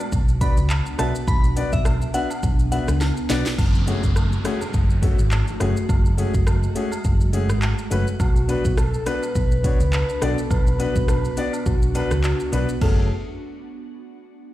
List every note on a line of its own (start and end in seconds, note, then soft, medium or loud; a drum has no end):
0.00 3.54 B3 medium
0.00 3.54 D4 medium
0.00 1.24 F#4 medium
0.00 shaker medium
0.12 0.47 B1 loud
0.12 kick loud
0.12 shaker medium
0.29 shaker medium
0.41 0.54 B3 medium
0.41 0.54 D4 medium
0.41 0.54 F#4 medium
0.41 0.54 B4 medium
0.41 0.54 D5 medium
0.41 0.53 B5 medium
0.41 kick medium
0.41 closed hi-hat medium
0.41 cabasa medium
0.41 shaker soft
0.57 0.79 C#2 medium
0.57 shaker medium
0.70 clap medium
0.70 high woodblock medium
0.70 shaker medium
0.86 shaker medium
0.98 1.11 B1 medium
0.98 1.11 B3 medium
0.98 1.12 D4 medium
0.98 1.12 F#4 medium
0.98 1.12 B4 medium
0.98 1.12 E5 medium
0.98 1.11 A5 medium
0.98 cross-stick loud
0.98 closed hi-hat medium
0.98 cabasa medium
0.98 shaker medium
1.15 shaker medium
1.28 1.62 B1 loud
1.28 3.56 G#4 medium
1.28 1.40 B5 loud
1.28 kick loud
1.28 shaker medium
1.44 shaker medium
1.56 1.69 B3 medium
1.56 1.69 D4 medium
1.56 1.69 F#4 medium
1.56 1.70 B4 medium
1.56 1.70 D5 medium
1.56 closed hi-hat medium
1.56 cabasa medium
1.56 shaker medium
1.73 2.05 B1 loud
1.73 1.82 E5 medium
1.73 kick loud
1.73 shaker medium
1.85 cross-stick loud
1.85 high woodblock medium
1.85 shaker medium
2.02 shaker medium
2.14 2.27 B3 medium
2.14 2.27 D4 medium
2.14 2.27 F#4 medium
2.14 2.27 B4 medium
2.14 2.27 E5 medium
2.14 2.26 F#5 medium
2.14 closed hi-hat medium
2.14 cabasa medium
2.14 shaker medium
2.30 high woodblock medium
2.30 shaker medium
2.43 2.78 B1 loud
2.43 kick medium
2.43 shaker medium
2.59 shaker medium
2.71 2.85 B3 medium
2.71 2.85 D4 medium
2.71 2.85 F#4 medium
2.71 2.85 B4 medium
2.71 2.85 E5 medium
2.71 2.84 F#5 medium
2.71 closed hi-hat medium
2.71 cabasa medium
2.71 shaker soft
2.88 3.10 C#2 loud
2.88 cross-stick medium
2.88 shaker medium
3.01 snare medium
3.01 high woodblock medium
3.01 shaker medium
3.17 shaker medium
3.29 3.42 B1 loud
3.29 3.42 B3 medium
3.29 3.42 D4 medium
3.29 3.42 F#4 medium
3.29 3.43 B4 medium
3.29 3.43 D5 loud
3.29 snare loud
3.29 closed hi-hat medium
3.29 cabasa medium
3.29 shaker medium
3.46 snare loud
3.46 shaker medium
3.58 3.93 F#1 loud
3.58 8.16 G#3 medium
3.58 8.16 A3 medium
3.58 8.16 F#4 medium
3.58 kick loud
3.58 crash loud
3.58 downlifter medium
3.58 high woodblock medium
3.58 shaker medium
3.75 shaker medium
3.87 4.00 A3 medium
3.87 4.00 C#4 medium
3.87 4.00 F#4 medium
3.87 4.01 G#4 loud
3.87 closed hi-hat medium
3.87 cabasa medium
3.87 shaker medium
4.03 4.35 F#1 medium
4.03 kick medium
4.03 shaker medium
4.16 cross-stick medium
4.16 high woodblock medium
4.16 shaker medium
4.32 shaker medium
4.44 4.58 A3 medium
4.44 4.58 C#4 medium
4.44 4.58 F#4 medium
4.44 4.58 G#4 loud
4.44 cross-stick medium
4.44 closed hi-hat medium
4.44 cabasa medium
4.44 shaker medium
4.61 high woodblock medium
4.61 shaker medium
4.74 5.08 F#1 loud
4.74 kick loud
4.74 shaker medium
4.90 shaker medium
5.02 5.15 A3 medium
5.02 5.16 C#4 medium
5.02 5.16 F#4 medium
5.02 5.16 A4 loud
5.02 kick medium
5.02 closed hi-hat medium
5.02 cabasa medium
5.02 shaker soft
5.19 5.41 G#1 medium
5.19 shaker medium
5.31 clap medium
5.31 high woodblock medium
5.31 shaker medium
5.48 shaker medium
5.60 5.73 F#1 loud
5.60 5.73 A3 medium
5.60 5.73 C#4 medium
5.60 5.73 F#4 medium
5.60 5.74 G#4 loud
5.60 cross-stick medium
5.60 closed hi-hat medium
5.60 cabasa medium
5.60 shaker medium
5.77 shaker medium
5.89 6.24 F#1 loud
5.89 kick loud
5.89 high woodblock medium
5.89 shaker medium
6.05 shaker medium
6.17 6.31 A3 medium
6.17 6.31 C#4 medium
6.17 6.31 F#4 medium
6.17 6.31 G#4 loud
6.17 closed hi-hat medium
6.17 cabasa medium
6.17 shaker medium
6.34 6.66 F#1 loud
6.34 kick medium
6.34 shaker medium
6.47 cross-stick loud
6.47 high woodblock medium
6.47 shaker medium
6.63 shaker medium
6.75 6.88 A3 medium
6.75 6.89 C#4 medium
6.75 6.89 F#4 medium
6.75 6.89 G#4 medium
6.75 closed hi-hat medium
6.75 cabasa medium
6.75 shaker medium
6.92 high woodblock medium
6.92 shaker medium
7.04 7.50 F#1 loud
7.04 kick medium
7.04 shaker medium
7.21 shaker medium
7.33 7.46 A3 medium
7.33 7.46 C#4 medium
7.33 7.46 F#4 medium
7.33 7.47 G#4 loud
7.33 closed hi-hat medium
7.33 cabasa medium
7.33 shaker soft
7.49 7.72 G#1 medium
7.49 cross-stick medium
7.49 shaker medium
7.62 clap medium
7.62 high woodblock medium
7.62 shaker medium
7.78 shaker medium
7.90 8.04 F#1 medium
7.90 8.04 A3 medium
7.90 8.04 C#4 medium
7.90 8.04 F#4 medium
7.90 8.04 B4 loud
7.90 closed hi-hat medium
7.90 cabasa medium
7.90 shaker medium
8.07 shaker medium
8.20 8.54 B1 loud
8.20 12.78 B3 medium
8.20 12.78 D4 medium
8.20 8.79 F#4 loud
8.20 12.78 F#4 medium
8.20 kick loud
8.20 high woodblock medium
8.20 shaker medium
8.36 shaker medium
8.48 8.61 B3 medium
8.48 8.62 D4 medium
8.48 8.62 F#4 medium
8.48 8.62 B4 loud
8.48 closed hi-hat medium
8.48 cabasa medium
8.48 shaker medium
8.65 8.97 B1 loud
8.65 kick medium
8.65 shaker medium
8.77 9.08 A4 loud
8.77 cross-stick loud
8.77 high woodblock medium
8.77 shaker medium
8.94 shaker medium
9.06 9.19 B3 medium
9.06 9.19 D4 medium
9.06 9.19 F#4 medium
9.06 9.92 B4 loud
9.06 9.20 B4 loud
9.06 cross-stick medium
9.06 closed hi-hat medium
9.06 cabasa medium
9.06 shaker medium
9.22 high woodblock medium
9.22 shaker medium
9.35 9.70 B1 loud
9.35 kick medium
9.35 shaker medium
9.52 shaker medium
9.63 9.77 B3 medium
9.63 9.77 D4 medium
9.63 9.77 F#4 medium
9.63 9.77 C#5 loud
9.63 kick medium
9.63 closed hi-hat medium
9.63 cabasa medium
9.63 shaker soft
9.80 10.02 C#2 medium
9.80 shaker medium
9.93 10.23 B4 loud
9.93 clap medium
9.93 high woodblock medium
9.93 shaker medium
10.09 shaker medium
10.21 10.34 B1 medium
10.21 10.34 B3 medium
10.21 10.35 D4 medium
10.21 10.35 F#4 medium
10.21 10.52 A4 loud
10.21 10.35 D5 loud
10.21 cross-stick loud
10.21 closed hi-hat medium
10.21 cabasa medium
10.21 shaker medium
10.38 shaker medium
10.50 10.85 B1 loud
10.50 11.68 B4 loud
10.50 kick loud
10.50 high woodblock medium
10.50 shaker medium
10.67 shaker medium
10.79 10.92 B3 medium
10.79 10.92 D4 medium
10.79 10.93 F#4 medium
10.79 10.93 B4 loud
10.79 closed hi-hat medium
10.79 cabasa medium
10.79 shaker medium
10.96 11.28 B1 loud
10.96 kick medium
10.96 shaker medium
11.08 cross-stick loud
11.08 high woodblock medium
11.08 shaker medium
11.25 shaker medium
11.37 11.50 B3 medium
11.37 11.50 D4 medium
11.37 11.50 F#4 medium
11.37 11.51 D5 loud
11.37 closed hi-hat medium
11.37 cabasa medium
11.37 shaker medium
11.53 high woodblock medium
11.53 shaker medium
11.66 12.01 B1 loud
11.66 12.23 F#4 medium
11.66 kick medium
11.66 shaker medium
11.82 shaker medium
11.94 12.08 B3 medium
11.94 12.08 D4 medium
11.94 12.08 F#4 medium
11.94 12.08 B4 loud
11.94 closed hi-hat medium
11.94 cabasa medium
11.94 high woodblock medium
11.94 shaker soft
12.11 12.33 C#2 medium
12.11 cross-stick medium
12.11 shaker medium
12.24 12.78 F#4 medium
12.24 clap medium
12.24 high woodblock medium
12.24 shaker medium
12.40 shaker medium
12.52 12.65 B1 loud
12.52 12.65 B3 medium
12.52 12.65 D4 medium
12.52 12.66 F#4 medium
12.52 12.66 B4 loud
12.52 closed hi-hat medium
12.52 cabasa medium
12.52 shaker medium
12.69 shaker medium
12.81 13.08 F#1 loud
12.81 13.08 A3 medium
12.81 13.08 C#4 medium
12.81 13.08 F#4 medium
12.81 13.08 G#4 medium
12.81 13.08 A4 medium
12.81 kick loud
12.81 crash medium
12.81 high woodblock medium